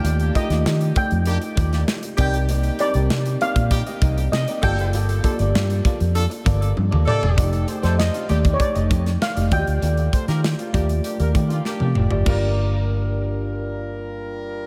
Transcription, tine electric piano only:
X:1
M:4/4
L:1/16
Q:1/4=98
K:Gm
V:1 name="Tine electric piano"
[A,EFGd] z [A,EFGe]4- [A,EFGe] z6 z [CEGBd]2- | [CEGBd] z [CEGBd]4- [CEGBd] z6 z [B,FGAd]2- | [B,FGAd] z [B,FGAd]4- [B,FGAd] z8 z | [A,EGd]4 z2 [A,EGd]4- [A,EGd] z3 [A,F^FGd]2- |
[A,F^FGd]4 z2 [A,=FGd]4- [A,FGd] z4 [A,FGd] | [B,FGd]16 |]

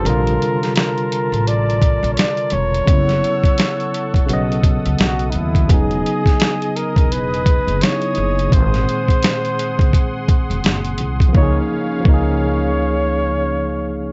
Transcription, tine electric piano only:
X:1
M:4/4
L:1/16
Q:"Swing 16ths" 1/4=85
K:Elyd
V:1 name="Tine electric piano"
[=A=c] z12 z3 | z16 | z16 | z16 |
z16 |]
V:2 name="Tine electric piano"
[^B,,=D,=G,^E]16 | [C,F,B,E]8 [C,F,B,d]8 | [C,F,B,D]12 [C,F,B,DE]4 | [A,,D,G,^B,]16 |
[^E,A,DG]2 z2 [E,A,DG]12 |]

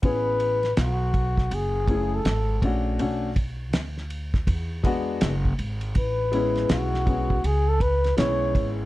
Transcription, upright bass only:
X:1
M:4/4
L:1/8
Q:"Swing 16ths" 1/4=81
K:A
V:1 name="Upright bass" clef=bass
A,,,2 B,,,2 F,,,2 G,,, _B,,, | B,,,2 D,,2 E,,2 F,,, G,,, | A,,,2 B,,,2 C,,2 B,,, G,,, |]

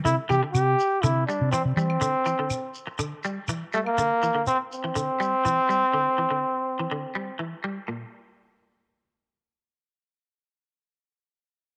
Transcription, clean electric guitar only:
X:1
M:4/4
L:1/16
Q:1/4=122
K:Cmix
V:1 name="Clean electric guitar" clef=bass
D,2 E, D,2 z3 D,2 G,2 E,2 G,2 | D,2 E, D,2 z3 D,2 G,2 E,2 G,2 | D,2 E, D,2 z2 E, D,2 G,2 E,2 G,2 | D,2 E, D,2 z2 E, D,2 G,2 E,2 G,2 |
B,,2 z12 z2 | z16 |]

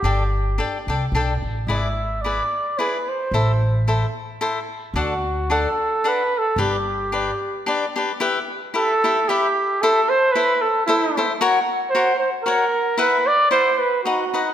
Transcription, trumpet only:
X:1
M:3/4
L:1/16
Q:"Swing" 1/4=111
K:G
V:1 name="Trumpet"
G4 z8 | e4 d4 B2 c2- | c4 z8 | F4 A4 B2 A2 |
G8 z4 | [K:Em] z4 A4 G4 | A2 c2 B2 A2 E3 z | z4 c2 c2 ^A4 |
B2 d2 c2 B2 F3 z |]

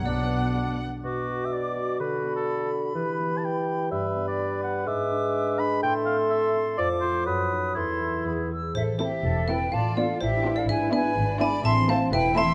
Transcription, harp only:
X:1
M:2/4
L:1/8
Q:1/4=125
K:Bm
V:1 name="Harp"
(3[B,,F] F, D (3F B, F, | B,, B, B B, | D, B, B B, | E, B, B B, |
G,, B, B B, | [K:Am] ^G,, D B D | A,, C A C | F,, [FA] ^F,, [^DA] |
E,, [EA] E,, [E^G] | (3A,, E, E (3A C E, | (3A,, A, F (3B D A, | (3^G,, ^G, E (3B D G, |
(3A,, E, E (3A C E, |]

